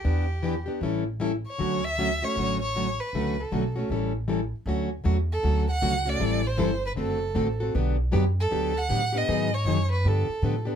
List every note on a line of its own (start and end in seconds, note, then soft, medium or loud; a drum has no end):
0.00 0.25 E3 medium
0.00 0.67 G4 medium
0.05 0.66 E2 medium
0.05 0.26 B3 medium
0.05 0.26 D4 medium
0.05 0.26 G4 medium
0.43 0.54 E3 medium
0.43 0.54 B3 medium
0.43 0.54 D4 medium
0.43 0.55 G4 medium
0.66 0.81 B3 soft
0.66 0.81 D4 medium
0.66 0.80 G4 medium
0.81 1.43 A1 medium
0.81 1.03 E3 soft
0.81 1.03 G3 medium
0.81 1.03 C#4 medium
0.81 1.03 E4 medium
0.81 1.03 A4 medium
1.20 1.31 E3 medium
1.20 1.31 G3 medium
1.20 1.32 C#4 medium
1.20 1.32 E4 medium
1.20 1.32 A4 medium
1.48 1.86 C#5 medium
1.58 2.21 D2 medium
1.58 1.80 D3 medium
1.58 1.80 F#3 medium
1.58 1.81 A3 medium
1.58 1.80 C#4 medium
1.58 1.81 F#4 medium
1.85 2.25 E5 loud
1.98 2.09 D3 medium
1.98 2.09 F#3 medium
1.98 2.09 A3 medium
1.98 2.09 C#4 medium
1.98 2.09 F#4 medium
2.22 2.37 A3 soft
2.22 2.36 C#4 soft
2.22 2.36 F#4 soft
2.22 2.61 C#5 medium
2.36 2.98 A1 medium
2.36 2.58 D3 medium
2.36 2.58 F#3 medium
2.36 2.58 A3 medium
2.36 2.59 C#4 medium
2.36 2.59 F#4 medium
2.62 3.01 C#5 medium
2.75 2.86 D3 medium
2.75 2.86 F#3 medium
2.75 2.86 A3 medium
2.75 2.87 C#4 medium
2.75 2.87 F#4 medium
3.00 3.42 B4 medium
3.13 3.46 C#2 medium
3.13 3.35 D3 medium
3.13 3.35 F#3 medium
3.13 3.35 A3 medium
3.13 3.36 C#4 medium
3.13 3.35 F#4 medium
3.40 3.77 A4 medium
3.52 3.84 B1 medium
3.52 3.63 D3 medium
3.52 3.63 F#3 medium
3.52 3.63 A3 medium
3.52 3.64 C#4 medium
3.52 3.64 F#4 medium
3.76 3.91 A3 soft
3.76 3.90 C#4 soft
3.76 3.89 F#4 medium
3.90 4.51 A1 medium
3.90 4.12 E3 medium
3.90 4.12 G3 medium
3.90 4.12 C#4 medium
3.90 4.12 E4 medium
3.90 4.12 A4 medium
4.28 4.39 E3 medium
4.28 4.39 G3 medium
4.28 4.40 C#4 medium
4.28 4.40 E4 medium
4.28 4.40 A4 medium
4.66 5.04 D2 medium
4.66 4.88 D3 medium
4.66 4.88 F#3 medium
4.66 4.88 A3 medium
4.66 4.89 C#4 medium
4.66 4.89 F#4 medium
5.04 5.43 E2 medium
5.04 5.16 D3 medium
5.04 5.16 F#3 medium
5.04 5.17 A3 medium
5.04 5.17 C#4 medium
5.04 5.17 F#4 medium
5.32 5.67 A4 medium
5.43 5.81 D2 medium
5.43 5.65 D3 medium
5.43 5.65 F#3 medium
5.43 5.65 A3 medium
5.43 5.65 C#4 medium
5.43 5.66 F#4 medium
5.71 6.11 F#5 loud
5.82 6.20 C#2 medium
5.82 5.93 D3 medium
5.82 5.93 F#3 medium
5.82 5.94 A3 medium
5.82 5.94 C#4 medium
5.82 5.94 F#4 medium
6.05 6.20 A3 soft
6.05 6.20 C#4 soft
6.05 6.20 F#4 medium
6.05 6.48 D5 loud
6.20 6.58 A1 medium
6.20 6.42 E3 medium
6.20 6.41 G3 medium
6.20 6.42 C4 medium
6.20 6.42 E4 medium
6.20 6.42 A4 medium
6.47 6.84 C5 loud
6.58 6.96 G1 medium
6.58 6.70 E3 medium
6.58 6.70 G3 medium
6.58 6.70 C4 medium
6.58 6.70 E4 loud
6.58 6.70 A4 medium
6.86 6.92 B4 medium
6.96 7.34 F#1 medium
6.96 7.18 D3 medium
6.96 7.18 A3 medium
6.96 7.19 C4 medium
6.96 7.19 F#4 medium
6.96 7.19 A4 medium
7.00 7.57 A4 medium
7.35 7.73 A1 medium
7.35 7.47 D3 medium
7.35 7.47 A3 medium
7.35 7.47 C4 medium
7.35 7.47 F#4 medium
7.35 7.47 A4 medium
7.60 7.75 C4 soft
7.60 7.74 F#4 soft
7.60 7.74 A4 medium
7.74 8.12 B1 medium
7.74 7.96 D3 medium
7.74 7.96 F#3 medium
7.74 7.96 B3 medium
7.74 7.96 D4 medium
7.74 7.96 G4 medium
8.11 8.51 F#2 medium
8.11 8.23 D3 medium
8.11 8.24 F#3 medium
8.11 8.24 B3 loud
8.11 8.24 D4 medium
8.11 8.24 G4 loud
8.40 8.79 A4 loud
8.51 8.89 D2 medium
8.51 8.72 D3 medium
8.51 8.72 F#3 medium
8.51 8.72 B3 medium
8.51 8.72 D4 medium
8.51 8.73 G4 medium
8.77 9.19 F#5 loud
8.89 9.27 A2 medium
8.89 9.00 D3 medium
8.89 9.01 F#3 medium
8.89 9.01 B3 medium
8.89 9.01 D4 medium
8.89 9.01 G4 medium
9.13 9.27 B3 soft
9.13 9.28 D4 medium
9.13 9.27 G4 medium
9.18 9.56 D#5 medium
9.27 9.64 G#2 medium
9.27 9.49 D#3 medium
9.27 9.49 F#3 medium
9.27 9.49 B3 medium
9.27 9.49 D#4 medium
9.27 9.50 G#4 medium
9.54 9.91 C#5 medium
9.65 10.03 F#2 medium
9.65 9.77 D#3 medium
9.65 9.78 F#3 medium
9.65 9.77 B3 medium
9.65 9.78 D#4 medium
9.65 9.78 G#4 loud
9.92 10.09 B4 medium
10.05 10.27 G2 medium
10.05 10.26 D3 medium
10.05 10.26 F3 medium
10.05 10.26 B3 medium
10.05 10.26 D4 medium
10.05 10.26 G4 medium
10.05 10.68 A4 medium
10.29 muted upright bass stroke soft
10.42 10.76 A2 medium
10.42 10.54 D3 medium
10.42 10.54 F3 medium
10.42 10.54 B3 medium
10.42 10.54 D4 medium
10.42 10.55 G4 medium
10.65 10.76 B3 soft
10.65 10.76 D4 soft
10.65 10.76 G4 medium